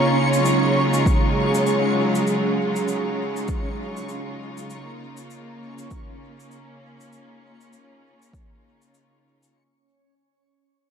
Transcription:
Already playing: string section C#3 A#3 C#4 D#4 F4, synth texture C#4 C#6
0.33 cabasa
0.38 string section F#3
0.42 string section G#3, cabasa
0.93 cabasa
1.06 kick, cabasa
1.54 cabasa
1.67 cabasa
2.15 cabasa
2.27 cabasa
2.76 cabasa
2.88 cabasa
3.37 cabasa
3.48 kick, cabasa
3.97 cabasa
4.09 cabasa
4.57 cabasa
4.70 cabasa
4.78 string section A#3
5.17 cabasa
5.30 cabasa
5.74 string section C#4, cabasa
5.91 kick, cabasa
6.40 cabasa
6.51 cabasa
7.00 cabasa
7.12 cabasa
7.61 cabasa
7.73 cabasa
8.22 cabasa
8.33 kick, cabasa
8.82 cabasa
8.94 cabasa
9.43 cabasa

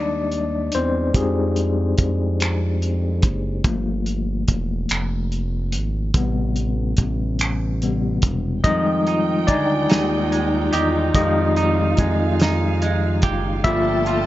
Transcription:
Already playing: analog synth bass D#2, tine electric piano G3 G#3 D4 D#4 D5 D#5
0.32 closed hi-hat
0.72 analog synth bass E2, tine electric piano C4 C5, closed hi-hat
1.14 analog synth bass F2, tine electric piano G#3 D#4 G4 G#4, kick, closed hi-hat
1.56 closed hi-hat
1.98 analog synth bass F2, kick, closed hi-hat
2.40 finger snap, closed hi-hat
2.82 closed hi-hat
3.22 analog synth bass F#1, kick, closed hi-hat
3.64 analog synth bass G1, tine electric piano F3 A3 A#3, kick, closed hi-hat
4.06 closed hi-hat
4.48 analog synth bass E1, kick, closed hi-hat
4.89 analog synth bass F1, finger snap, closed hi-hat
5.32 closed hi-hat
5.72 analog synth bass G#1, closed hi-hat
6.14 analog synth bass A1, tine electric piano C3 G3 B3, kick, closed hi-hat
6.56 closed hi-hat
6.97 analog synth bass A1, kick, closed hi-hat
7.39 finger snap, closed hi-hat
7.82 tine electric piano C3 G3 B3, closed hi-hat
8.22 analog synth bass E1, kick, closed hi-hat
8.63 analog synth bass F2, tine electric piano D#3 G3 G#3 D#4 D#5, clean electric guitar F3, string section D#4 F4 G5, kick, closed hi-hat
9.07 clean electric guitar D#4, closed hi-hat
9.47 analog synth bass D2, clean electric guitar G#3, tine electric piano D#4 D5, kick, closed hi-hat
9.90 analog synth bass D#2, tine electric piano D#3 G#3 G4, clean electric guitar D#4, snare, closed hi-hat
10.32 clean electric guitar G#3, closed hi-hat
10.73 analog synth bass E2, tine electric piano D#4 D#5, clean electric guitar G4, closed hi-hat
11.15 analog synth bass F2, tine electric piano D#3 G#3 D#4 G4 D#5, clean electric guitar F3, string section F5, kick, closed hi-hat
11.56 clean electric guitar D#4, closed hi-hat
11.97 analog synth bass F2, clean electric guitar G#3, kick, closed hi-hat
12.40 clean electric guitar D#4, snare, closed hi-hat
12.82 clean electric guitar G#3, closed hi-hat
13.22 analog synth bass F#1, clean electric guitar G4, kick, closed hi-hat
13.64 analog synth bass G1, tine electric piano F3 A3 A#3 F4 E5, clean electric guitar G3, string section F4 A4 G5 A5, kick, closed hi-hat
14.06 clean electric guitar F4, closed hi-hat

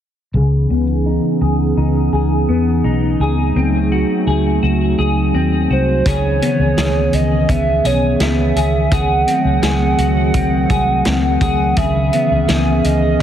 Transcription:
0.34 fingered electric bass C#2, clean electric guitar C#3 G#4, ambient pad E3 B3 C#4 D#4 G#4
0.70 fingered electric bass C#2, clean electric guitar B3
1.06 clean electric guitar D#4
1.41 fingered electric bass C#2, clean electric guitar G#4
1.77 fingered electric bass C#2, clean electric guitar D#4
2.12 fingered electric bass C#2, clean electric guitar G#4
2.48 fingered electric bass E2, clean electric guitar B3
2.84 fingered electric bass B1, clean electric guitar D#4
3.20 fingered electric bass C#2, ambient pad F#3 A3 C4, clean electric guitar G#4
3.55 fingered electric bass C#2, clean electric guitar C4
3.92 clean electric guitar F#4
4.27 fingered electric bass C#2, clean electric guitar G#4
4.63 fingered electric bass C#2, clean electric guitar F#4
4.99 fingered electric bass C#2, clean electric guitar G#4
5.33 fingered electric bass D#2, clean electric guitar C4
5.70 fingered electric bass C2, clean electric guitar F#4, soft synth lead C5
6.06 fingered electric bass C#2, clean electric guitar C#3 G#4, ambient pad D#3 E3 B3 C#4 G#4, soft synth lead C#5, kick, closed hi-hat
6.42 clean electric guitar B3, closed hi-hat
6.59 fingered electric bass C#2
6.77 fingered electric bass C#2, clean electric guitar G#4, snare, closed hi-hat
7.13 fingered electric bass C#2, soft synth lead D#5, closed hi-hat
7.49 fingered electric bass C#2, clean electric guitar B3, soft synth lead E5, kick, closed hi-hat
7.85 fingered electric bass B1, clean electric guitar G#4, soft synth lead C#5, closed hi-hat
8.20 fingered electric bass C#2, clean electric guitar B3, soft synth lead E5, snare, closed hi-hat
8.56 fingered electric bass C#2, clean electric guitar G#4, closed hi-hat
8.91 fingered electric bass C#2, ambient pad F#3 A3 C4 G#4, clean electric guitar G#4, soft synth lead F#5, kick, closed hi-hat
9.27 clean electric guitar C4, closed hi-hat
9.45 fingered electric bass C#2
9.62 fingered electric bass C#2, clean electric guitar G#4, snare, closed hi-hat
9.98 fingered electric bass C#2, clean electric guitar F#4, closed hi-hat
10.34 fingered electric bass C#2, clean electric guitar C4, kick, closed hi-hat
10.70 fingered electric bass C2, clean electric guitar G#4, kick, closed hi-hat
11.05 fingered electric bass C#2, clean electric guitar C4, snare, closed hi-hat
11.41 fingered electric bass C#2, clean electric guitar G#4, soft synth lead F#5, kick, closed hi-hat
11.77 fingered electric bass C#2, clean electric guitar C#3 G#4, ambient pad E3 B3 C#4, soft synth lead E5, kick, closed hi-hat
12.13 clean electric guitar B3, closed hi-hat
12.31 fingered electric bass C#2
12.48 fingered electric bass C#2, clean electric guitar G#4, snare, closed hi-hat
12.79 soft synth lead E5
12.84 fingered electric bass C#2, soft synth lead D#5, closed hi-hat

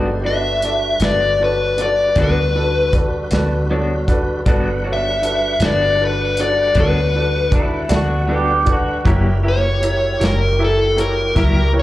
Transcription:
Already playing: fingered electric bass G1, tonewheel organ G#3 D#4 G4 C5, upright piano D4 F#4 A4 B4
0.21 tonewheel organ G3 D4 F#4 B4, upright piano D4 F#4, clean electric guitar D4 F#4
0.26 clean electric guitar B3, upright piano A4 B4, lead electric guitar E5
0.62 upright piano D4 F#4 A4 D5, closed hi-hat
1.00 fingered electric bass G1, upright piano D4 F#4 A4 B4, clean electric guitar D4 F#4, lead electric guitar D5, snare, closed hi-hat
1.04 clean electric guitar B3
1.40 upright piano D4 F#4 A4 C#5, lead electric guitar B4
1.77 upright piano D4 F#4 A4 D5, closed hi-hat
1.82 lead electric guitar D5
2.16 fingered electric bass D2, clean electric guitar G3 B3 D4 F#4, upright piano D4 F#4 A4 B4, kick, snare, closed hi-hat
2.22 lead electric guitar B4
2.55 upright piano D4 F#4 A4 B4
2.93 upright piano D4 F#4 A4 B4, kick, closed hi-hat
3.31 fingered electric bass D2, clean electric guitar B3 D4 F#4, upright piano D4 F#4 A4 B4, snare, closed hi-hat
3.70 clean electric guitar G3 B3 D4 F#4, upright piano D4 F#4 A4 C#5
4.08 upright piano D4 F#4 A4 B4, kick, closed hi-hat
4.46 fingered electric bass G1, clean electric guitar G3 B3 D4 F#4, tonewheel organ G3 D4 B4 F#5, upright piano D4 F#4 A4 B4, kick, closed hi-hat
4.83 clean electric guitar B3 D4 F#4, upright piano D4 F#4 A4 C#5
4.93 lead electric guitar E5
5.22 upright piano D4 F#4 A4 B4, closed hi-hat
5.60 fingered electric bass G1, upright piano D4 F#4 A4 B4, clean electric guitar D4 F#4, snare, closed hi-hat
5.64 clean electric guitar B3, lead electric guitar D5
6.00 upright piano D4 F#4 A4 B4
6.05 lead electric guitar B4
6.37 upright piano D4 F#4 A4 D5, closed hi-hat
6.41 lead electric guitar D5
6.75 fingered electric bass D2, clean electric guitar G3 B3 D4 F#4, upright piano D4 F#4 A4 C#5, kick, closed hi-hat
6.80 lead electric guitar B4
7.15 upright piano D4 F#4 A4 B4
7.51 upright piano D4 F#4 A4 D5, kick, closed hi-hat
7.55 clean electric guitar E4
7.89 fingered electric bass D2, clean electric guitar B3 D4 F#4, upright piano D4 F#4 A4 D5, snare, closed hi-hat
7.95 clean electric guitar F#4
8.27 clean electric guitar G3 B3 D4 F#4, upright piano D4 F#4 A4 B4
8.35 clean electric guitar G4
8.65 upright piano D4 F#4 A4 B4, kick, closed hi-hat
8.72 clean electric guitar F#4
9.05 fingered electric bass F#1, clean electric guitar F#3 A#3 E4 G4, upright piano E4 G4 A#4 C#5, tonewheel organ E4 F#4, kick, closed hi-hat
9.09 tonewheel organ G3 G4
9.43 clean electric guitar A#3 E4 G4, upright piano E4 G4 A#4 E5
9.48 lead electric guitar C#5
9.82 upright piano E4 G4 A#4 E5, closed hi-hat
10.19 fingered electric bass F#1, clean electric guitar A#3 E4 G4, upright piano E4 G4 A#4 C#5, closed hi-hat
10.24 lead electric guitar A#4, snare
10.59 upright piano E4 G4 A#4 E5
10.64 lead electric guitar A4
10.96 upright piano E4 G4 A#4 C#5, closed hi-hat
11.00 lead electric guitar A#4
11.35 fingered electric bass C#2, clean electric guitar F#3 A#3 E4 G4, upright piano E4 G4 A#4 E5, kick, snare, closed hi-hat
11.73 upright piano E4 G4 A#4 C#5
11.79 lead electric guitar C#5

